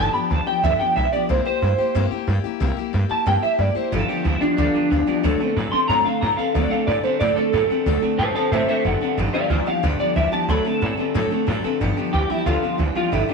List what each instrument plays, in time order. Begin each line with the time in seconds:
Already playing: steel-string acoustic guitar G2 D3, clean electric guitar A5
0.00 steel-string acoustic guitar F3 B3 D4 G4
0.14 steel-string acoustic guitar F3 B3 D4 G4, clean electric guitar B5, muted upright bass stroke
0.30 upright bass D2, steel-string acoustic guitar F3 B3 D4 G4, clean electric guitar A5
0.47 steel-string acoustic guitar F3 B3 D4 G4, clean electric guitar G5, muted upright bass stroke
0.63 upright bass D2, steel-string acoustic guitar G2 D3 F3 B3 D4 G4, clean electric guitar E5
0.80 steel-string acoustic guitar F3 B3 D4 G4, clean electric guitar G5, muted upright bass stroke
0.96 upright bass B1, steel-string acoustic guitar F3 B3 D4 G4, clean electric guitar E5
1.12 steel-string acoustic guitar F3 B3 D4 G4, clean electric guitar D5, muted upright bass stroke
1.29 upright bass C2, steel-string acoustic guitar C3 G3 A#3 E4 G4, clean electric guitar C5
1.45 steel-string acoustic guitar A#3 E4 G4, clean electric guitar C5
1.62 upright bass G2, steel-string acoustic guitar G3 A#3 E4 G4
1.78 steel-string acoustic guitar A#3 E4 G4, muted upright bass stroke
1.95 upright bass G2, steel-string acoustic guitar C3 G3 A#3 E4 G4
2.11 steel-string acoustic guitar A#3 E4 G4, muted upright bass stroke
2.27 upright bass G2, steel-string acoustic guitar G3 A#3 E4 G4
2.44 steel-string acoustic guitar A#3 E4 G4, muted upright bass stroke
2.60 upright bass C2, steel-string acoustic guitar C3 G3 A#3 E4 G4
2.77 steel-string acoustic guitar A#3 E4 G4, muted upright bass stroke
2.93 upright bass G2, steel-string acoustic guitar G3 A#3 E4 G4
3.09 steel-string acoustic guitar A#3 E4 G4, clean electric guitar A5, muted upright bass stroke
3.26 upright bass G2, steel-string acoustic guitar C3 G3 A#3 E4 G4, clean electric guitar G5
3.43 steel-string acoustic guitar A#3 E4 G4, clean electric guitar E5, muted upright bass stroke
3.59 upright bass G2, steel-string acoustic guitar G3 A#3 E4 G4, clean electric guitar D5
3.75 steel-string acoustic guitar A#3 E4 G4, clean electric guitar C5, muted upright bass stroke
3.92 upright bass G1, steel-string acoustic guitar G2 D3 F3 B3 F4 G4, clean electric guitar G2 D3 A4
4.08 clean electric guitar G2 D3 G4, steel-string acoustic guitar F3 B3 F4 G4, muted upright bass stroke
4.24 upright bass D2, clean electric guitar G2 E3 E4, steel-string acoustic guitar F3 B3 F4 G4
4.41 clean electric guitar G2 E3 D4, steel-string acoustic guitar F3 B3 F4 G4, muted upright bass stroke
4.57 upright bass D2, clean electric guitar G2 D3 D4, steel-string acoustic guitar G2 D3 F3 B3 F4 G4
4.74 clean electric guitar G2 D3, steel-string acoustic guitar F3 B3 F4 G4, muted upright bass stroke
4.90 upright bass D2, clean electric guitar G2 E3, steel-string acoustic guitar F3 B3 F4 G4
5.07 clean electric guitar G2 E3, steel-string acoustic guitar F3 B3 F4 G4, muted upright bass stroke
5.23 upright bass D2, clean electric guitar D3 A3, steel-string acoustic guitar D3 F#3 C4 D4 A4
5.40 clean electric guitar D3 A3, steel-string acoustic guitar C4 D4 A4, muted upright bass stroke
5.56 upright bass A2, clean electric guitar D3 B3, steel-string acoustic guitar F#3 C4 D4 A4
5.72 clean electric guitar D3 B3 C6, steel-string acoustic guitar C4 D4 A4, muted upright bass stroke
5.88 upright bass A2, steel-string acoustic guitar D3 F#3 C4 D4 A4, clean electric guitar D3 A3 A#5
6.05 clean electric guitar D3 A3 F5, steel-string acoustic guitar C4 D4 A4, muted upright bass stroke
6.21 upright bass A2, clean electric guitar D3 B3 A#5, steel-string acoustic guitar F#3 C4 D4 A4
6.37 clean electric guitar D3 B3 F5, steel-string acoustic guitar C4 D4 A4, muted upright bass stroke
6.54 upright bass D2, steel-string acoustic guitar D3 F#3 C4 D4 A4, clean electric guitar D3 A3 D5
6.70 clean electric guitar D3 A3 F5, steel-string acoustic guitar C4 D4 A4, muted upright bass stroke
6.87 upright bass A2, clean electric guitar D3 B3 D5, steel-string acoustic guitar F#3 C4 D4 A4
7.03 clean electric guitar D3 B3 C5, steel-string acoustic guitar C4 D4 A4, muted upright bass stroke
7.20 upright bass A2, steel-string acoustic guitar D3 F#3 C4 D4 A4, clean electric guitar D3 A3 D5
7.36 clean electric guitar D3 A3 A4, steel-string acoustic guitar C4 D4 A4, muted upright bass stroke
7.53 upright bass A2, clean electric guitar D3 B3, steel-string acoustic guitar F#3 C4 D4 A4
7.70 clean electric guitar D3 B3, steel-string acoustic guitar C4 D4 A4, muted upright bass stroke
7.86 upright bass D2, steel-string acoustic guitar D3 F#3 C4 D4 A4, clean electric guitar D3 A3
8.02 clean electric guitar D3 A3, steel-string acoustic guitar C4 D4 A4, muted upright bass stroke
8.18 upright bass A2, clean electric guitar D3 B3 C5 A5, steel-string acoustic guitar F#3 C4 D4 A4
8.35 clean electric guitar D3 B3 C5 A5, steel-string acoustic guitar C4 D4 A4, muted upright bass stroke
8.52 upright bass A2, clean electric guitar D3 A3 C5 E5, steel-string acoustic guitar D3 F#3 C4 D4 A4
8.68 clean electric guitar D3 A3 C5 E5, steel-string acoustic guitar C4 D4 A4, muted upright bass stroke
8.85 upright bass F#1, clean electric guitar D3 B3 F#5, steel-string acoustic guitar F#3 C4 D4 A4
9.01 clean electric guitar D3 B3, steel-string acoustic guitar C4 D4 A4, muted upright bass stroke
9.17 upright bass G1, steel-string acoustic guitar G2 D3 F3 B3 D4 G4, clean electric guitar G2 D3
9.34 clean electric guitar G2 D3 D5 F5, steel-string acoustic guitar F3 B3 D4 G4, muted upright bass stroke
9.50 upright bass D2, clean electric guitar G2 E3 F4 D5, steel-string acoustic guitar F3 B3 D4 G4
9.66 clean electric guitar G2 E3 F5, steel-string acoustic guitar F3 B3 D4 G4, muted upright bass stroke
9.83 upright bass D2, steel-string acoustic guitar G2 D3 F3 B3 D4 G4, clean electric guitar G2 D3
9.99 clean electric guitar G2 D3 D5, steel-string acoustic guitar F3 B3 D4 G4, muted upright bass stroke
10.16 upright bass D2, clean electric guitar G2 E3 E5, steel-string acoustic guitar F3 B3 D4 G4
10.32 clean electric guitar G2 E3 A5, steel-string acoustic guitar F3 B3 D4 G4
10.48 upright bass D2, steel-string acoustic guitar D3 F#3 C4 D4 A4, clean electric guitar D3 A3 B5
10.65 clean electric guitar D3 A3 A5, steel-string acoustic guitar C4 D4 A4, muted upright bass stroke
10.81 upright bass A2, clean electric guitar D3 B3, steel-string acoustic guitar F#3 C4 D4 A4
10.97 clean electric guitar D3 B3, steel-string acoustic guitar C4 D4 A4, muted upright bass stroke
11.14 upright bass A2, steel-string acoustic guitar D3 F#3 C4 D4 A4, clean electric guitar D3 A3
11.30 clean electric guitar D3 A3, steel-string acoustic guitar C4 D4 A4, muted upright bass stroke
11.47 upright bass A2, clean electric guitar D3 B3, steel-string acoustic guitar F#3 C4 D4 A4
11.64 clean electric guitar D3 B3, steel-string acoustic guitar C4 D4 A4, muted upright bass stroke
11.81 upright bass G1, steel-string acoustic guitar G2 D3 F3 B3 D4 G4, clean electric guitar G2 D3
11.97 clean electric guitar G2 D3, steel-string acoustic guitar F3 B3 D4 G4
12.13 upright bass D2, clean electric guitar G2 E3 G4, steel-string acoustic guitar F3 B3 D4 G4
12.30 clean electric guitar G2 E3 E4, steel-string acoustic guitar F3 B3 D4 G4, muted upright bass stroke
12.46 upright bass D2, clean electric guitar G2 D3 F4, steel-string acoustic guitar G2 D3 F3 B3 D4 G4
12.62 clean electric guitar G2 D3, steel-string acoustic guitar F3 B3 D4 G4, muted upright bass stroke
12.78 upright bass D2, clean electric guitar G2 E3, steel-string acoustic guitar F3 B3 D4 G4
12.95 clean electric guitar G2 E3 F4, steel-string acoustic guitar F3 B3 D4 G4, muted upright bass stroke
13.12 upright bass G1, steel-string acoustic guitar G2 D3 F3 B3 D4 G4, clean electric guitar G2 D3 E4
13.29 clean electric guitar G2 D3 D4, steel-string acoustic guitar B3 D4 G4, muted upright bass stroke